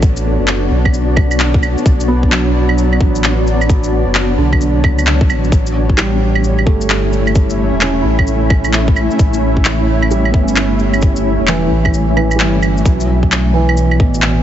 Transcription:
Already playing: sub bass A1, felt piano A3 B3, ambient pad B3 D4 F#4 C#5 D5
0.02 kick, shaker
0.17 shaker
0.39 sub bass F#1
0.48 clap, shaker
0.71 sub bass B1
0.85 kick, claves
0.94 shaker
1.16 kick, claves
1.31 claves, shaker
1.40 clap, shaker
1.54 kick
1.63 claves, shaker
1.78 shaker
1.85 sub bass B1, kick, shaker
2.00 shaker
2.08 felt piano B3
2.23 kick
2.28 felt piano F#3 D4, clap, shaker
2.69 claves
2.78 shaker
2.93 claves
3.01 sub bass A1, kick
3.15 shaker
3.24 clap, shaker
3.47 shaker
3.61 claves, shaker
3.70 kick, shaker
3.84 shaker
4.06 sub bass F#1
4.15 clap, shaker
4.38 sub bass B1, felt piano D3
4.53 kick, claves
4.61 shaker
4.84 sub bass C#2, kick, claves
4.99 claves, shaker
5.07 clap, shaker
5.21 kick
5.29 sub bass A1, claves, shaker
5.44 shaker
5.52 sub bass A1, ambient pad A3 C#4 E4 E5, kick, shaker
5.66 shaker
5.90 kick
5.97 felt piano G3, clap, shaker
6.35 claves
6.44 shaker
6.59 claves
6.66 sub bass G1, felt piano A3, kick
6.81 shaker
6.90 clap, shaker
7.13 shaker
7.27 claves, shaker
7.35 kick, shaker
7.50 shaker
7.72 sub bass E1
7.81 felt piano C#4, clap, shaker
8.02 sub bass A1, felt piano E4
8.19 kick, claves
8.27 shaker
8.50 kick, claves
8.64 claves, shaker
8.73 clap, shaker
8.88 kick
8.96 claves, shaker
9.11 shaker
9.19 sub bass A1, kick, shaker
9.34 shaker
9.57 kick
9.65 clap, shaker
10.02 claves
10.11 felt piano G3, shaker
10.25 claves
10.30 sub bass G1, felt piano B3, kick
10.43 felt piano C#4
10.48 shaker
10.56 clap, shaker
10.79 shaker
10.94 claves, shaker
11.02 kick, shaker
11.16 shaker
11.40 sub bass E1
11.47 felt piano E3, clap, shaker
11.71 sub bass A1
11.85 kick, claves
11.94 shaker
12.17 felt piano E3, claves
12.31 claves, shaker
12.36 sub bass G1, felt piano G3, clap, shaker
12.63 claves, shaker
12.77 shaker
12.85 sub bass B1, felt piano F#3, ambient pad B3 F#4 C#5 D5, kick, shaker
13.00 shaker
13.23 kick
13.32 clap, shaker
13.54 felt piano E3
13.69 claves
13.77 shaker
13.91 claves
14.00 sub bass A1, felt piano B2, kick
14.14 shaker
14.22 clap, shaker

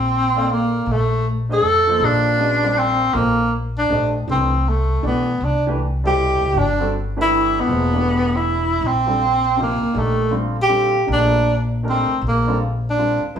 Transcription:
Already playing: upright bass A#1, tenor saxophone C4
0.36 grand piano A#3 D#4 A4 D5 F5
0.53 tenor saxophone A#3
0.86 upright bass A#1
0.92 tenor saxophone A3
1.49 grand piano A3 D4 G4 C5 D#5
1.53 tenor saxophone A4
1.62 upright bass F2
1.87 grand piano D#3 F3 A#3 A4 C5
2.00 upright bass A#1
2.05 tenor saxophone D4
2.37 grand piano G#3 C#4 F#4 B4 D#5
2.63 grand piano G3 C4 F4 A#4 D5
2.79 tenor saxophone C4
3.14 upright bass A#1, grand piano F3 A#3 D#4 A4 C5, tenor saxophone A#3
3.78 tenor saxophone D4
3.90 upright bass A#1, grand piano A3 D4 G4 C5 D#5
4.27 upright bass C2, grand piano E3 A3 D4 G4 B4, tenor saxophone C4
4.69 tenor saxophone A3
5.03 upright bass B1, grand piano E3 A3 D4 G4 D5
5.07 tenor saxophone B3
5.41 upright bass C2
5.45 tenor saxophone D4
5.67 grand piano E3 A3 D4 G4 B4
6.04 grand piano B2 G3 E4 A4 C5, tenor saxophone G4
6.41 upright bass C#2
6.54 upright bass G1
6.59 tenor saxophone D4
6.79 grand piano D3 G3 C4 F#4 A4
7.16 grand piano E3 A3 D4 G4 B4
7.22 tenor saxophone E4
7.60 tenor saxophone B3
7.67 upright bass E1, grand piano F3 A#3 D#4 G#4 C5
7.93 grand piano E3 A3 D4 G4 B4
8.36 tenor saxophone E4
8.81 upright bass A#1
8.87 tenor saxophone C4
9.06 grand piano D3 G3 C4 F4 A4
9.57 grand piano C3 F3 A#3 D#4 G4
9.63 tenor saxophone A#3
9.83 muted upright bass stroke
9.93 upright bass A#1, grand piano D#3 A3 D4 G4 A#4
9.99 tenor saxophone A3
10.31 grand piano D3 G3 C4 F4 C5
10.62 tenor saxophone G4
10.68 grand piano D3 G3 C4 F4 A4
11.06 upright bass A#1, grand piano D#3 A3 D4 G4 A#4
11.13 tenor saxophone D4
11.83 grand piano D#3 A3 D4 G4 A#4
11.89 tenor saxophone C4
12.09 muted upright bass stroke
12.22 upright bass A#1
12.28 tenor saxophone A#3
12.47 grand piano D3 G3 C4 F4 A4
12.90 tenor saxophone D4
12.97 grand piano D3 G3 C4 F4 C5
13.23 muted upright bass stroke
13.35 upright bass C2, grand piano F#3 E4 A4 B4 C5

